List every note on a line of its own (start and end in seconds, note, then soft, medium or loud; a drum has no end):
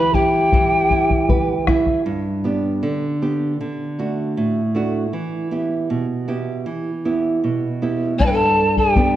0.00 0.49 E3 medium
0.00 0.14 B4 medium
0.00 0.15 B4 medium
0.00 0.16 B5 loud
0.14 0.52 E4 medium
0.14 1.67 G4 medium
0.14 1.68 G5 loud
0.14 bombo low medium
0.52 2.03 E3 medium
0.52 bombo low medium
0.90 1.29 E4 medium
0.90 bombo low medium
1.10 bombo low medium
1.29 1.67 B4 medium
1.29 bombo low medium
1.67 2.05 E4 medium
1.67 bombo rim medium
1.67 bombo low medium
1.86 bombo low medium
2.06 2.80 G2 medium
2.44 3.06 B3 soft
2.44 3.06 D4 soft
2.44 3.06 G4 soft
2.83 3.57 D3 medium
3.22 3.52 B3 soft
3.22 3.53 D4 soft
3.22 3.53 G4 soft
3.60 4.35 D3 medium
3.99 4.60 A3 soft
3.99 4.60 D4 soft
3.99 4.60 F#4 soft
4.37 5.11 A2 medium
4.75 5.06 A3 soft
4.75 5.06 D4 soft
4.75 5.06 F#4 soft
5.13 5.88 E3 medium
5.52 6.13 B3 soft
5.52 6.13 E4 soft
5.52 6.14 G4 soft
5.90 6.65 B2 medium
6.28 6.90 B3 soft
6.28 6.90 E4 soft
6.28 6.90 G4 soft
6.66 7.41 E3 medium
7.05 7.67 B3 soft
7.05 7.67 E4 soft
7.05 7.67 G4 soft
7.44 8.18 B2 medium
7.82 8.12 B3 soft
7.82 8.13 E4 soft
7.82 8.13 G4 soft
8.19 9.16 G2 medium
8.19 8.27 D5 medium
8.19 8.28 A5 medium
8.19 bombo low medium
8.26 8.34 B4 medium
8.26 8.36 G5 medium
8.32 8.77 A4 medium
8.32 8.78 A5 loud
8.77 9.16 G4 medium
8.77 9.16 G5 loud
8.77 bombo low medium
8.96 9.16 B3 soft
8.96 9.16 D4 soft
8.96 9.16 G4 soft
8.96 bombo low medium